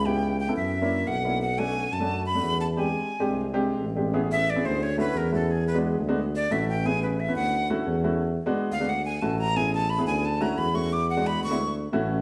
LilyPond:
<<
  \new Staff \with { instrumentName = "Flute" } { \time 4/4 \key a \major \tempo 4 = 177 g''4 g''8 e''4. fis''4 | fis''8 gis''4 a''4 b''4 a''8 | gis''2 r2 | r8 e''8 d''8 c''8 cis''8 b'8 bes'8 a'8 |
gis'8 b'8 r4. d''8 e''8 g''8 | gis''8 b'8 e''8 fis''4 r4. | r4. f''8 fis''8 gis''8 a''8 bes''8 | gis''8 a''8 b''8 gis''8 a''8 bes''8 b''8 cis'''8 |
d'''8 fis''8 b''8 cis'''4 r4. | }
  \new Staff \with { instrumentName = "Grand piano" } { \time 4/4 \key a \major <b cis' e' g'>4 r16 <b cis' e' a'>8. r16 <ais cis' d' e'>8. r8 <ais cis' d' e'>8 | r8 <a cis' d' fis'>4 r16 <a cis' d' fis'>8. r16 <a cis' d' fis'>8. r8 | <gis bis d' g'>4 r16 <gis bis d' g'>8. r16 <gis bis d' g'>8. r8 <gis bis d' g'>8 | <b cis' e' gis'>4 r16 <b cis' e' gis'>8. r8 <a cis' e' fis'>8. r16 <a cis' e' fis'>8 |
r8. <gis b d' fis'>8. r16 <gis b d' fis'>16 r4 <a cis' e' fis'>8. r16 | <b cis' e' gis'>4 r16 <b cis' e' b'>8. r8 <a cis' e' fis'>8. r16 <a cis' e' fis'>8 | r8. <gis b d' fis'>8. r16 <gis b d' fis'>16 r4 <a cis' e' fis'>8. r16 | <b cis' e' gis'>4 r16 <b cis' e' gis'>8. r8 <a cis' e' fis'>8. r16 <a cis' e' fis'>8 |
r8. <gis b d' fis'>8. r16 <gis b d' e'>16 r4 <a cis' e' fis'>8. r16 | }
  \new Staff \with { instrumentName = "Tuba" } { \clef bass \time 4/4 \key a \major cis,4. fis,4. b,,4~ | b,,4. fis,4. e,4~ | e,8 r4 bis,,4. a,,4~ | a,,4. d,4. e,4~ |
e,4. d,4. a,,4~ | a,,4. d,4. e,4~ | e,8 r4 d,4. a,,4~ | a,,4. d,4. e,4~ |
e,4. d,4. a,,4 | }
>>